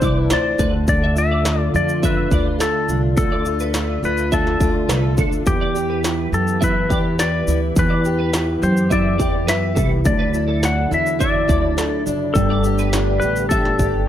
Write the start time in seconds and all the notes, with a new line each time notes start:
Already playing: C3 E3 C4 D4 C5
0.02 C2 E4 D5, kick, shaker
0.17 B4
0.30 D2 C5 D5, snare, shaker
0.58 D2 D3 A3 F4 B4, kick, shaker
0.88 D3 D5, kick, shaker
1.04 E5
1.16 F4 E5, shaker
1.31 D5
1.45 D4, snare, shaker
1.59 D5
1.74 F2 F4 D5, shaker
1.89 shaker
2.02 D4 B4 E5, kick, shaker
2.31 D2 F4 D5, kick, shaker
2.59 A4, snare, shaker
2.88 C2 D4, shaker
3.17 D2 D3 A4, kick, shaker
3.32 D5
3.45 F4, shaker
3.60 B4, shaker
3.74 D4, snare, shaker
4.03 D2 F4 B4, shaker
4.17 shaker
4.32 D4 A4 E5, kick, shaker
4.47 snare
4.60 D2 F4 D5, kick, shaker
4.89 C2 A4 B4, snare, shaker
5.17 D2 D4 A4, kick, shaker
5.32 shaker
5.45 E2 E3 B3 G4, kick, shaker
5.61 D5
5.75 G4, shaker
5.90 B4
6.03 E4, snare, shaker
6.32 F#2 G4 A4, shaker
6.48 shaker
6.61 E4 B4 E5, kick, shaker
6.90 E2 G4 D5, kick, shaker
7.19 B4 D5, snare, shaker
7.48 D2 E4, shaker
7.76 E2 E3 B4, kick, shaker
7.90 D5
8.05 G4, shaker
8.19 B4
8.33 E4, snare, shaker
8.62 F#2 G4 C5, shaker
8.77 shaker
8.90 E4 D5 E5, kick, shaker
9.18 E2 G4 D5, kick, shaker
9.47 F#2 B4 E5, snare, shaker
9.75 C2 E4 A4, kick, shaker
10.04 D2 D3 F#3 D4 E4 D5, kick, shaker
10.19 B4
10.34 E4, shaker
10.48 A4
10.63 D4 F#5, snare, shaker
10.91 E2 E4 E5, shaker
11.06 shaker
11.19 D4 D5 E5, kick, shaker
11.48 D2 E4 D5, kick, shaker
11.77 A4, snare, shaker
12.06 F#1 D4, shaker
12.34 G1 G3 A3 B3 G4 A4, kick, shaker
12.50 D5
12.64 G4, shaker
12.78 B4, shaker
12.92 D4, snare, shaker
13.20 A1 G4 B4, shaker
13.36 shaker
13.49 D4 A4 E5, kick, shaker
13.65 snare
13.79 G1 G4 D5, kick, shaker